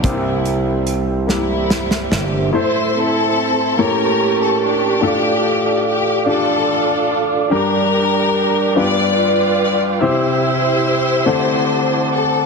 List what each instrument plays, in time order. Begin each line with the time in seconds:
0.03 slap bass C2, grand piano C3 A#3 D4 G4 C5, tonewheel organ G4 C5 E5, kick, closed hi-hat
0.10 grand piano E4
0.45 closed hi-hat
0.87 closed hi-hat
1.27 string section G3 A#3 E4, grand piano A#3 E4 G4 A#4, snare
1.70 snare
1.91 snare
2.12 slap bass G1, string section G4, snare
2.53 grand piano A2 E4 A4 C5, string section E4 A4 C5, tonewheel organ A4 C5 E5 C6
2.96 string section C4 E4 A4
3.77 grand piano A2 A3 A#3 E4 G4 C#5, string section C#4 G4, tonewheel organ G4 A#4 A5 C#6
3.82 string section A#4
4.42 string section A4
4.64 string section D4 G4
5.01 grand piano A2 D4 F4 A4, tonewheel organ A4 D5 F5 D6
5.88 string section G4
6.26 grand piano D4 F4 G4, string section D4 F4 A4
7.50 grand piano G2 D4 G4 A#4, string section D4 G4 A#4, tonewheel organ A#4 G5
8.75 grand piano G2 B3 D4 F4 G4 D5, string section F4 B4 D5, tonewheel organ B4 F5
9.64 string section D5
10.00 grand piano C3 E4 G4 C5, tonewheel organ C5 E5 E6
10.06 string section E4 G4 C5
11.25 grand piano D3 A3 C4 D4 C5 F#5, tonewheel organ C5 F#5 A5 D6
12.14 string section A4